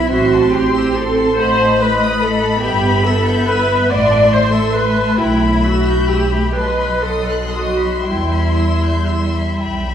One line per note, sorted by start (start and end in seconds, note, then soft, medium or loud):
0.00 0.11 B3 soft
0.00 0.12 E4 medium
0.00 0.11 E5 medium
0.00 0.12 B5 medium
0.11 1.18 A1 medium
0.11 1.35 C4 medium
0.11 0.54 F#4 medium
0.11 0.32 E5 soft
0.11 1.35 C6 soft
0.34 0.55 A5 soft
0.54 0.97 G4 medium
0.54 0.76 C6 soft
0.75 0.97 E6 soft
0.96 1.39 A4 medium
0.96 1.17 C6 soft
1.18 1.38 A5 soft
1.38 2.42 A1 medium
1.38 2.60 A3 medium
1.38 1.79 C5 medium
1.38 2.60 D#5 medium
1.38 1.57 F#5 soft
1.38 3.90 B5 medium
1.59 1.80 A5 soft
1.80 2.21 B4 medium
1.80 2.01 B5 medium
2.01 2.21 D#6 soft
2.20 2.62 A4 medium
2.20 2.42 B5 soft
2.41 2.63 A5 medium
2.62 3.69 G1 medium
2.62 3.88 B3 medium
2.62 3.04 G4 medium
2.62 6.53 E5 medium
2.62 2.83 G5 soft
2.85 3.06 B5 soft
3.04 3.47 A4 medium
3.04 3.27 E6 soft
3.27 3.48 G6 soft
3.47 3.90 B4 medium
3.47 3.70 E6 soft
3.69 3.90 B5 soft
3.89 4.97 A1 medium
3.89 6.56 A3 medium
3.89 4.32 D5 medium
3.89 4.10 F#5 medium
3.89 5.18 C6 medium
4.10 4.32 A5 soft
4.30 4.53 C5 medium
4.30 4.52 C6 soft
4.52 4.74 A4 medium
4.52 4.74 E6 soft
4.74 5.18 B4 medium
4.74 4.96 C6 soft
4.96 5.18 A5 soft
5.17 6.33 B1 medium
5.17 5.64 E4 medium
5.17 5.40 G5 soft
5.17 6.56 B5 soft
5.41 5.64 B5 soft
5.64 6.09 F#4 medium
5.64 5.86 E6 soft
5.88 6.10 G6 soft
6.09 6.56 G4 medium
6.09 6.32 E6 soft
6.32 6.56 B5 soft
6.54 7.81 B1 medium
6.54 8.04 F#3 medium
6.54 7.05 B4 medium
6.54 8.04 D#5 soft
6.54 6.78 A5 soft
6.54 9.58 C6 soft
6.78 7.04 B5 soft
7.04 7.55 A4 medium
7.04 7.29 D#6 soft
7.29 7.55 F#6 soft
7.53 8.07 F#4 medium
7.53 7.80 D#6 soft
7.80 8.07 B5 soft
8.05 9.37 E2 soft
8.05 9.95 G3 soft
8.05 9.63 E4 soft
8.05 9.95 E5 soft
8.05 8.31 G5 soft
8.32 8.59 B5 soft
8.57 8.84 E6 soft
8.84 9.11 G6 soft
9.09 9.36 E6 soft
9.35 9.61 B5 soft
9.62 9.95 B1 soft
9.62 9.87 G5 soft
9.62 9.95 B5 soft
9.89 9.95 B5 soft